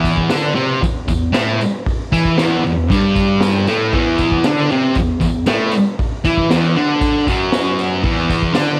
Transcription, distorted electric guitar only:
Already playing: E2 E3
0.30 D3 D4
0.55 C3 C4
0.82 E2
1.08 E2
1.32 A2 A3
2.13 E3 E4
2.38 E2 E3
2.65 E2
2.90 G2 G3
3.68 A2 A3
3.93 E2 E3
4.44 D3 D4
4.71 C3 C4
4.96 E2
5.21 E2
5.47 A2 A3
6.24 E3 E4
6.49 E2 E3
6.76 D3 D4
7.28 F#2 F#3
8.04 E2 E3
8.53 D3 D4

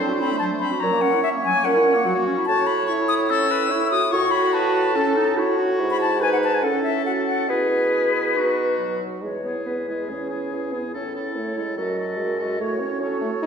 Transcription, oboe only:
Already playing: C5
0.83 C#5
2.47 C#5
3.30 A4
3.51 B4
3.71 C#5
4.13 C#5
4.54 B4
4.96 A4
5.38 C#5
6.21 B4
6.64 A4
7.50 G#4
8.37 F#4
9.45 G#4
9.88 G#4
10.30 G#4
10.73 G#4
10.94 A4
11.15 A4
11.58 A4
11.78 A4
11.99 A4
12.40 A4
12.61 C#5
13.02 C#5

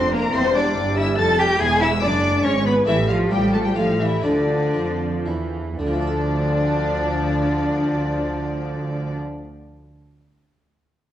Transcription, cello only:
Already playing: C4
0.13 A#3
0.33 C4
0.54 D4
0.97 E4
1.17 A4
1.38 G4
1.60 G#4
1.81 E4
2.02 D4
2.44 C#4
2.65 B3
2.86 E3
3.09 F3
3.32 G3
3.54 A3
3.66 G3
3.77 F3
4.00 E3
4.24 D3
5.80 D4

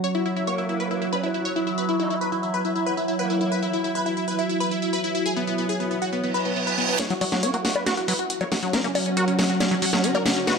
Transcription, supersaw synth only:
0.04 C#5
0.15 E4
0.26 E4
0.36 E4
0.47 C#5
0.58 E4
0.69 E4
0.80 B4
0.91 E4
1.02 E4
1.13 B4
1.23 E4
1.34 E4
1.45 C#5
1.56 E4
1.67 E4
1.78 B4
1.89 E4
2.00 E4
2.10 E4
2.21 B4
2.32 E4
2.43 E4
2.54 B4
2.65 E4
2.76 E4
2.86 B4
2.97 E4
3.08 E4
3.19 B4
3.30 E4
3.41 E4
3.52 B4
3.63 E4
3.73 E4
3.84 E4
3.95 B4
4.06 E4
4.17 E4
4.28 B4
4.39 E4
4.49 E4
4.60 B4
4.71 E4
4.82 E4
4.93 B4
5.04 E4
5.15 E4
5.26 G#4
5.36 B3
5.47 B3
5.58 B3
5.69 G#4
5.80 B3
5.91 B3
6.02 F#4
6.13 B3
6.23 B3
6.34 B4
6.45 B3
6.56 B3
6.67 B4
6.78 B3
6.89 B3
7.00 C#5
7.10 F#4
7.21 F#4
7.32 F#4
7.43 C#5
7.54 F#4
7.65 F#4
7.76 B4
7.86 F#4
7.97 F#4
8.08 B4
8.19 F#4
8.30 F#4
8.41 C#5
8.52 F#4
8.63 F#4
8.73 A#4
8.84 C#4
8.95 C#4
9.06 C#4
9.17 A#4
9.28 C#4
9.39 C#4
9.50 F#4
9.60 C#4
9.71 C#4
9.82 F#4
9.93 C#4
10.04 C#4
10.15 A#4
10.26 C#4
10.37 C#4
10.47 B4

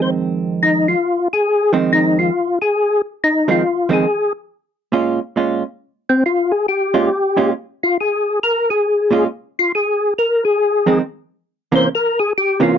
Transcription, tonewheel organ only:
0.02 C5
0.63 D#4
0.88 F4
1.33 G#4
1.93 D#4
2.19 F4
2.62 G#4
3.24 D#4
3.51 F4
3.93 G#4
6.09 C4
6.26 F4
6.52 G#4
6.68 G4
7.83 F4
8.01 G#4
8.43 A#4
8.70 G#4
9.59 F4
9.75 G#4
10.18 A#4
10.45 G#4
11.75 C5
11.95 A#4
12.19 G#4
12.38 G4
12.63 F4

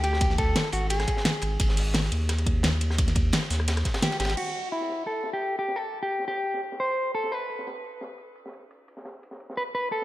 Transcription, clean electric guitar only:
0.04 G4
0.38 A4
0.73 F#4
0.90 G#4
4.03 G4
4.20 G4
4.37 F#4
4.72 E4
5.07 A4
5.33 G4
5.59 G4
5.76 A4
6.03 G4
6.28 G4
6.80 C5
7.15 A4
7.32 B4
9.57 B4
9.75 B4
9.92 A4

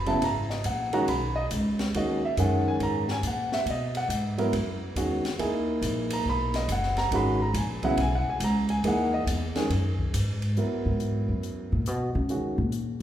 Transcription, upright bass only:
Already playing: F#1
0.21 G#1
0.65 A#1
1.08 B1
1.51 C#2
1.94 D#2
2.37 F#2
2.80 G#2
3.23 A#2
3.65 B2
4.09 G#2
4.53 F#2
4.95 E2
5.39 D#2
5.81 A#1
6.25 B1
6.68 F#1
7.11 G#1
7.54 A#1
7.97 B1
8.26 muted upright bass stroke
8.40 C#2
8.83 D#2
9.26 E2
9.69 F#2
10.14 G#2
10.86 G#2
11.28 F#2
11.72 A#2
11.87 B2
12.15 C#3
12.58 A#2

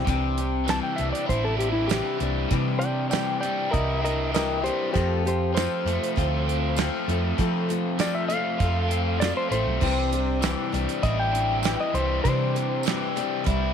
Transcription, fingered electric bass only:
0.08 C2
0.99 C2
1.29 A1
2.20 C2
2.52 C3
3.74 C2
4.95 F2
5.85 F2
6.18 D2
7.08 F2
7.39 F3
8.60 F2
9.51 A1
9.67 B1
9.82 C2
10.73 C2
11.04 A1
11.94 C2
12.25 C3
13.47 C2

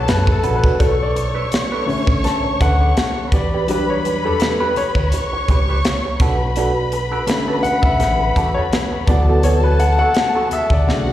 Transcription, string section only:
Already playing: A4 A5
0.80 C#5 C#6
3.33 B4 B5
5.12 C#5 C#6
6.20 B4 B5
9.07 A4 A5
10.88 F#4 F#5

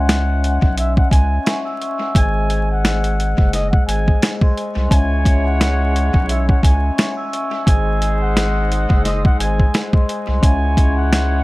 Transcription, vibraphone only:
Already playing: C#4 C#5 D#5 E5 G#5 C6
1.44 E5 C#6
1.65 G#5 E6
1.81 E5 C#6
2.01 G#5 E6
2.14 G#3 G#4 C5
2.18 D#5
3.88 G#3 G#4 C5 D#5
4.42 D#5 C6
4.57 C5 G#5
4.79 D#5 C6
4.88 C#4 C#5 E5
4.93 F#5
4.99 G#5
6.96 E5 C#6
7.17 G#5 E6
7.33 E5 C#6
7.53 G#5
7.65 G#3 G#4 C5
7.69 D#5
9.39 G#3 G#4 C5 D#5
9.94 D#5 C6
10.09 C5 G#5
10.30 D#5 C6
10.40 C#4 C#5 E5
10.45 F#5
10.51 G#5

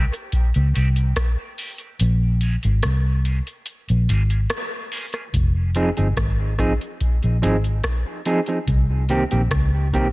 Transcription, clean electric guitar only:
0.75 D#3 G#3 C4 G4
1.58 D#3 G#3 C4 G4
1.80 D#3 G#3 C4 G4
2.42 F3 A#3 C#4 G#4
2.64 F3 A#3 C#4 G#4
3.25 F3 A#3 C#4 G#4
4.09 F3 A#3 C#4 G#4
4.31 F3 A#3 C#4 G#4
4.92 F3 A#3 C#4 G#4
5.14 F3 A#3 C#4 G#4
5.76 F3 C4 D#4 G#4
5.97 F3 C4 D#4 G#4
6.59 F3 C4 D#4 G#4
7.42 F3 C4 D#4 G#4
8.26 F3 C4 D#4 G#4
8.48 F3 C4 D#4 G#4
9.09 D#3 A#3 C4 G4
9.31 D#3 A#3 C4 G4
9.93 D#3 A#3 C4 G4

